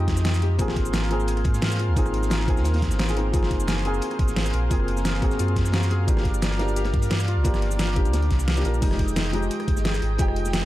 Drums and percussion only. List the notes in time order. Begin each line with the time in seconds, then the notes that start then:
0.08 kick, snare, closed hi-hat
0.16 snare, cabasa
0.24 snare, closed hi-hat
0.33 snare, cabasa
0.42 snare, closed hi-hat
0.59 kick, closed hi-hat, cabasa
0.68 cross-stick, snare
0.76 kick, closed hi-hat
0.86 cabasa
0.93 snare, closed hi-hat, cabasa
1.02 cross-stick, closed hi-hat
1.11 closed hi-hat
1.20 cabasa
1.28 closed hi-hat, cabasa
1.37 cross-stick, closed hi-hat
1.44 kick, closed hi-hat
1.53 snare, cabasa
1.62 snare, closed hi-hat
1.71 cross-stick, cabasa
1.79 closed hi-hat
1.96 kick, closed hi-hat, cabasa
2.06 cross-stick, cabasa
2.14 closed hi-hat
2.22 snare, cabasa
2.30 snare, closed hi-hat, cabasa
2.40 cross-stick
2.48 kick, closed hi-hat
2.57 snare, cabasa
2.64 snare, closed hi-hat, cabasa
2.74 snare, closed hi-hat
2.77 snare, closed hi-hat
2.82 kick, snare, closed hi-hat
2.91 snare, cabasa
2.99 snare, closed hi-hat
3.09 snare, cabasa
3.16 snare, closed hi-hat
3.34 kick, closed hi-hat, cabasa
3.42 cross-stick, snare
3.51 kick, closed hi-hat
3.60 cabasa
3.67 snare, closed hi-hat, cabasa
3.76 cross-stick, closed hi-hat
3.85 closed hi-hat
3.94 cabasa
4.02 closed hi-hat, cabasa
4.11 cross-stick, closed hi-hat
4.19 kick, closed hi-hat
4.28 snare, cabasa
4.36 snare, closed hi-hat
4.46 cross-stick, cabasa
4.53 closed hi-hat
4.71 kick, closed hi-hat, cabasa
4.80 cross-stick
4.88 closed hi-hat
4.97 snare, cabasa
5.05 snare, closed hi-hat, cabasa
5.14 cross-stick
5.22 kick, closed hi-hat
5.31 snare, cabasa
5.39 closed hi-hat, cabasa
5.48 closed hi-hat
5.56 kick, snare, closed hi-hat
5.65 snare, cabasa
5.72 snare, closed hi-hat
5.82 snare, cabasa
5.90 snare, closed hi-hat
6.08 kick, closed hi-hat, cabasa
6.17 cross-stick, snare
6.24 kick, closed hi-hat
6.34 cabasa
6.42 snare, closed hi-hat, cabasa
6.51 cross-stick, closed hi-hat
6.59 snare, closed hi-hat
6.68 cabasa
6.76 snare, closed hi-hat, cabasa
6.84 cross-stick, snare, closed hi-hat
6.93 kick, snare, closed hi-hat
7.02 snare, closed hi-hat, cabasa
7.10 snare, closed hi-hat
7.20 cross-stick, cabasa
7.28 closed hi-hat
7.44 kick, closed hi-hat, cabasa
7.54 cross-stick, snare, cabasa
7.62 closed hi-hat
7.70 snare, cabasa
7.79 snare, closed hi-hat, cabasa
7.88 cross-stick
7.96 kick, closed hi-hat
8.05 closed hi-hat, cabasa
8.13 snare, closed hi-hat, cabasa
8.22 closed hi-hat
8.31 kick, snare, closed hi-hat
8.40 cabasa
8.48 snare, closed hi-hat
8.57 cabasa
8.65 snare, closed hi-hat, cabasa
8.74 cabasa
8.82 kick, closed hi-hat, crash, cabasa
8.91 cross-stick, snare
8.99 kick, closed hi-hat
9.08 cabasa
9.16 snare, closed hi-hat, cabasa
9.25 cross-stick, closed hi-hat
9.34 closed hi-hat
9.43 cabasa
9.51 closed hi-hat, cabasa
9.60 cross-stick, closed hi-hat
9.68 kick, closed hi-hat
9.77 snare, cabasa
9.85 snare, closed hi-hat
9.94 cross-stick, cabasa
10.02 closed hi-hat
10.18 kick, closed hi-hat, cabasa
10.28 cross-stick
10.36 closed hi-hat
10.45 snare, cabasa
10.53 snare, closed hi-hat, cabasa